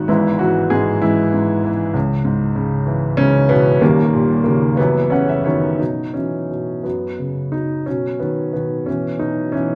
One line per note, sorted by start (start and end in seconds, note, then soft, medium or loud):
0.00 0.08 G#1 soft
0.00 0.08 G#2 medium
0.00 0.10 D#3 soft
0.08 1.90 G#1 medium
0.08 0.69 G#2 medium
0.08 0.38 E3 soft
0.08 0.38 G#3 soft
0.08 0.38 B3 medium
0.08 0.38 E4 medium
0.39 1.01 E3 medium
0.39 0.70 F#3 medium
0.39 0.72 F#4 medium
0.70 1.32 G#2 medium
0.70 1.01 G#3 medium
0.70 1.03 G#4 medium
1.02 1.62 E3 medium
1.02 1.68 G#3 soft
1.02 1.67 E4 medium
1.34 1.93 G#2 medium
1.64 1.93 E3 medium
1.94 3.76 C#2 medium
2.25 3.17 G#2 medium
2.55 3.17 C#3 medium
2.87 3.49 E3 soft
3.17 3.79 G#2 medium
3.17 3.47 C#3 medium
3.17 3.50 C#4 medium
3.49 3.79 B2 medium
3.49 3.80 E3 medium
3.49 3.82 B3 medium
3.81 4.74 D#1 medium
3.81 4.75 D#2 medium
3.81 4.45 D#3 medium
3.81 5.07 G3 medium
3.81 4.42 A#3 medium
4.14 4.76 A#2 medium
4.44 4.76 C#3 soft
4.44 4.78 D#3 soft
4.44 4.78 A#3 medium
4.77 5.77 F#1 soft
4.77 5.44 F#2 medium
4.77 5.10 E3 medium
4.77 5.12 B3 medium
5.10 5.79 C#3 soft
5.10 5.44 E3 medium
5.10 5.46 C#4 medium
5.10 5.27 F#5 medium
5.29 5.44 E5 medium
5.44 5.79 F#2 soft
5.44 5.78 D#3 medium
5.44 5.81 B3 medium
5.44 5.78 C#5 medium
5.79 6.49 B2 soft
5.79 6.13 F#3 soft
5.79 6.16 D#4 soft
6.14 6.81 E3 soft
6.14 6.82 F#3 soft
6.14 6.86 C#4 soft
6.50 6.83 B2 soft
6.83 7.83 F#2 soft
6.83 7.49 F#3 soft
6.83 7.54 B3 soft
7.19 7.85 C#3 soft
7.52 7.85 F#3 soft
7.52 7.87 D#4 medium
7.86 8.53 B2 soft
7.86 8.19 F#3 soft
7.86 8.21 C#4 soft
8.20 8.52 D#3 soft
8.20 8.85 F#3 soft
8.20 8.52 B3 soft
8.53 8.86 B2 soft
8.53 8.86 D#3 soft
8.53 8.88 B3 soft
8.86 9.19 B2 soft
8.86 9.19 E3 soft
8.86 9.18 C#4 medium
9.19 9.53 B2 soft
9.19 9.52 F#3 soft
9.19 9.54 D#4 medium
9.52 9.75 B2 soft
9.52 9.75 E3 soft
9.52 9.75 C#4 medium